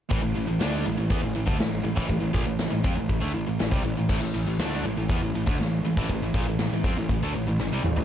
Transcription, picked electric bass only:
0.11 A1
0.24 A1
0.37 A1
0.49 A1
0.62 D2
0.86 A1
0.99 A1
1.11 E2
1.23 A1
1.36 A1
1.48 D2
1.61 A1
1.85 A1
1.97 A1
2.10 A1
2.21 A1
2.35 A#1
2.47 A1
2.71 A1
2.85 F2
2.98 A1
3.09 A1
3.22 D2
3.35 A1
3.48 A1
3.60 A1
3.72 C2
3.86 A1
3.97 A1
4.10 A1
4.23 A1
4.35 A1
4.47 A1
4.59 D2
4.84 A1
4.96 A1
5.10 E2
5.22 A1
5.34 A1
5.48 D2
5.59 A1
5.83 A1
5.97 A1
6.10 A1
6.22 A1
6.34 A#1
6.48 A1
6.73 A1
6.84 F2
6.98 A1
7.10 A1
7.22 D2
7.34 A1
7.46 A1
7.59 A1
7.72 C2
7.83 A1
7.96 A1

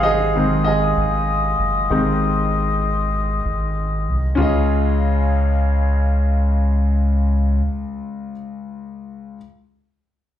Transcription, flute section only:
Already playing: G#4 D#5 C6 D#6
4.38 C#4 C#5 D#5 F5 G#5

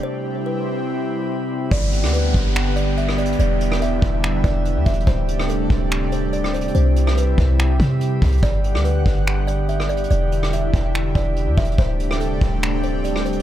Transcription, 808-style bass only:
1.71 G1
2.03 D2
2.34 G1
3.39 E1
4.02 E1
4.44 E1
4.76 E2
4.86 E1
5.07 D1
5.70 D1
6.75 C2
7.38 C2
7.80 C3
8.22 C2
8.43 G1
8.74 D2
9.06 G1
10.11 E1
10.74 E1
11.15 E1
11.47 E2
11.58 E1
11.78 D1
12.41 D1

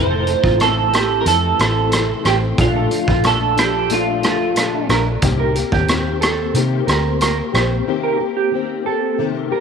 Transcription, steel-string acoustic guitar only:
Already playing: F2 C3 E3 A3 C4
0.26 E3 A3 C4
0.59 C3 E3 A3 C4
0.92 E3 A3 C4
1.25 F2 C3 E3 A3 C4
1.58 A3 C4
1.62 E3
1.91 C3 E3 A3 C4
2.24 E3 A3 C4
2.58 A#2 F3 A3 D4
2.90 A3 D4
2.94 F3
3.23 A#2 F3 A3 D4
3.56 F3 A3 D4
3.89 A#2 F3 A3 D4
4.22 F3 A3 D4
4.55 A#2 F3 A3 D4
4.88 F3 A3 D4
5.21 C3 D#3 A#3 C4 G4
5.54 A#3 C4 G4
5.87 D#3 A#3 C4 G4
6.20 A#3 C4 G4
6.54 C3 D#3 A#3 C4 G4
6.86 A#3 C4 G4
7.21 A#3 C4 G4
7.52 C4 G4
7.56 A#3
7.86 C3 D#3 A#3 C4 G4
8.19 A#3 C4 G4
8.51 D#3 A#3 C4 G4
8.85 A#3 C4 G4
9.18 C3 D#3 A#3 C4 G4
9.51 A#3 C4 G4

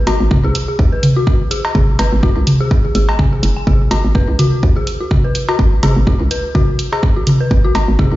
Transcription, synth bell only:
0.07 F#4
0.44 G#4
0.68 G#4
0.92 B4
1.16 F#4
1.51 G#4
1.75 G#4
1.99 B4
2.23 F#4
2.61 G#4
2.85 G#4
2.95 G#4
3.09 G#5
3.33 G#4
3.56 G#5
3.67 G#4
3.91 F#4
4.15 B4
4.39 F#4
4.76 G#4
5.01 F#4
5.24 B4
5.48 F#4
5.83 G#4
6.07 F#4
6.31 B4
6.55 F#4
6.92 G#4
7.16 F#4
7.41 B4
7.64 F#4
7.99 G#4

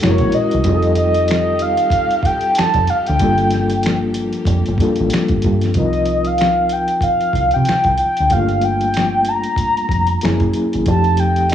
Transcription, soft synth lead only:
0.03 C#5
0.34 D#5
0.98 D#5
1.30 D#5
1.62 F5
2.26 G5
2.58 A5
2.90 F5
3.07 G5
5.77 D#5
6.27 F5
6.72 G5
7.03 F5
7.54 G5
8.00 G5
8.32 F5
8.64 G5
9.28 A#5
10.88 A5
11.20 G5
11.52 D#5

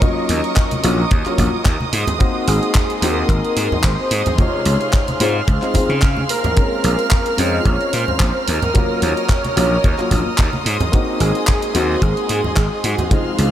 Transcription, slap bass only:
0.29 D#2
0.84 A#1
1.11 D#2
1.26 muted slap bass stroke
1.38 A#1
1.53 muted slap bass stroke
1.66 D#2
1.93 G#2
2.47 G#1
3.02 D#2
3.29 G#1
3.57 G#2
3.72 muted slap bass stroke
3.84 G#1
4.11 G#2
4.66 C#2
5.20 G#2
5.48 C#2
5.89 C#3
6.84 A#1
7.38 F2
7.66 A#1
7.93 A#2
8.08 muted slap bass stroke
8.20 A#1
8.48 D#2
9.02 D#2
9.57 A#1
9.84 D#2
9.99 muted slap bass stroke
10.11 A#1
10.26 muted slap bass stroke
10.39 D#2
10.66 G#2
11.20 G#1
11.75 D#2
12.02 G#1
12.30 G#2
12.45 muted slap bass stroke
12.57 G#1
12.84 G#2
13.39 C#2

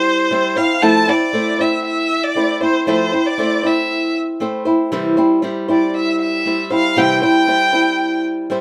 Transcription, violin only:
Already playing: C5
0.57 F5
0.82 A5
1.09 D5
1.60 E5
1.85 E5
2.24 D5
2.63 C5
2.88 C5
3.27 D5
3.66 E5
5.71 D5
5.97 E5
6.21 E5
6.73 F5
6.98 G5
7.24 G5

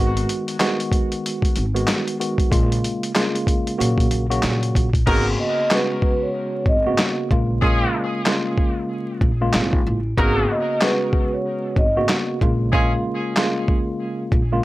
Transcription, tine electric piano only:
Already playing: D#3 G#3 B3 F#4
0.60 D#3 G#3 B3 F#4
1.74 D#3 G#3 B3 F#4
2.19 D#3 G#3 B3 F#4
2.51 C#3 G#3 A#3 F4
3.15 C#3 G#3 A#3 F4
3.78 C#3 F#3 A#3 F#4
4.29 C#3 F#3 A#3 F#4
5.07 C#3 A#3 B3 F#4
5.71 C#3 G#3 B3 F#4
6.86 C#3 A#3 B3 F#4
7.31 C#3 G#3 A#3 F4
7.63 C#3 G#3 A#3 F4
8.26 C#3 G#3 A#3 F4
9.41 C#3 G#3 A#3 F4
10.18 C#3 A#3 B3 F#4
10.82 C#3 G#3 B3 F#4
11.96 C#3 A#3 B3 F#4
12.41 C#3 G#3 A#3 F4
12.73 C#3 G#3 A#3 F4
13.37 C#3 G#3 A#3 F4
14.52 C#3 G#3 A#3 F4

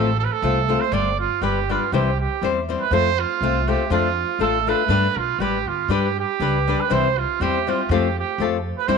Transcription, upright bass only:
Already playing: A1
0.42 C2
0.92 G1
1.41 G1
1.92 C2
2.42 E2
2.91 F2
3.41 C2
3.90 F2
4.39 A1
4.88 G2
5.16 B1
5.38 A1
5.66 G1
5.88 G2
6.40 C#2
6.90 C2
7.40 E2
7.89 F2
8.38 F2
8.88 G2

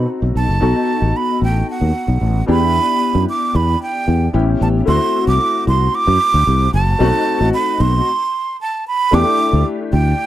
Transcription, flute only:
0.37 A5
1.17 B5
1.44 G5
1.70 F#5
2.50 B5
3.29 D6
3.56 B5
3.83 G5
4.62 A5
4.88 C6
5.28 D6
5.68 C6
5.95 D6
6.74 A5
7.54 B5
7.81 C6
8.61 A5
8.88 B5
9.14 D6
9.93 G5

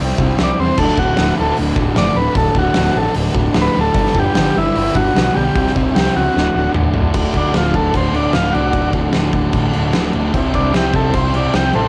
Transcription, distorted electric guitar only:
Already playing: C3
0.00 G3 C4
0.17 C3 G3 C4
0.39 C3 G3 C4
0.58 C3 G3 C4
0.79 D2 A2 D3
0.99 D2 A2 D3
1.18 D2 A2 D3
1.38 D2 A2 D3
1.58 D2 A2 D3
1.78 D2 A2 D3
1.97 D2 A2 D3
2.17 D2 A2 D3
2.35 D2 A2 D3
2.55 D2 A2 D3
2.75 D2 A2 D3
2.94 D2 A2 D3
3.14 D2 A2 D3
3.34 D2 A2 D3
3.54 D2 A2 D3
3.74 D2 A2 D3
3.94 G2 D3 G3
4.14 G2 D3 G3
4.34 G2 D3 G3
4.55 G2 D3 G3
4.75 G2 D3 G3
4.95 G2 D3 G3
5.14 G2 D3 G3
5.34 G2 D3 G3
5.55 C3 G3 C4
5.75 C3 G3 C4
5.95 C3 G3 C4
6.14 C3 G3 C4
6.35 D2 A2 D3
6.55 D2 A2 D3
6.75 D2 A2 D3
6.95 D2 A2 D3
7.14 D2 A2 D3
7.35 A2 D3
7.54 D2 A2 D3
8.13 A2 D3
8.32 D2 A2 D3
8.53 A2 D3
8.72 D2 A2 D3
8.92 A2 D3
9.12 D2 A2 D3
9.74 A2 D3
9.93 D2 A2 D3
10.15 A2 D3
10.34 C3 G3 C4
10.54 G3 C4
10.74 C3 G3 C4
11.33 G3 C4
11.52 C3 G3 C4
11.73 G3 C4

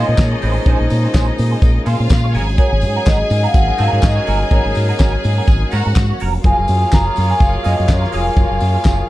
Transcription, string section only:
Already playing: D#4 D#5
1.86 F4 F5
2.34 G#4 G#5
5.72 F#4 F#5
6.44 F4 F5

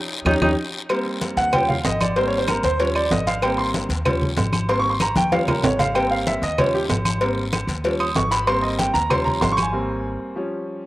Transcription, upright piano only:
0.26 C#4 D#4 G4
0.42 C#4 D#4 G4
0.90 G3 A#3 C4
1.38 F#5
1.53 F3 G3 C#4 G5
1.69 F5
1.85 D#5
2.01 D5
2.16 G3 A#3 C4 C5
2.27 C#5
2.38 C5
2.48 A#4
2.64 C5
2.79 F3 G3 C#4 C#5
2.95 D5
3.11 D#5
3.27 F5
3.43 G3 A#3 C4 G5
3.58 C6
4.05 F3 G3 C#4
4.69 G3 A#3 C4 C6
4.79 C#6
4.90 C6
5.02 A#5
5.17 G5
5.32 F3 G3 C#4 F5
5.48 A#4
5.65 C#5
5.79 F5
5.94 G3 A#3 C4 G5
6.11 F5
6.27 E5
6.43 D#5
6.58 F3 G3 C#4 C#5
6.74 G4
7.21 G3 A#3 C4
7.84 F3 G3 C#4
8.00 D#6
8.16 C#6
8.31 B5
8.47 G3 A#3 C4 C6
8.62 D#5
8.79 G5
8.94 A#5
9.09 F3 G3 C#4 C6
9.25 A#5
9.41 C6
9.52 C#6
9.62 G#5
9.72 G3 A#3 C4
10.36 F3 G3 C#4

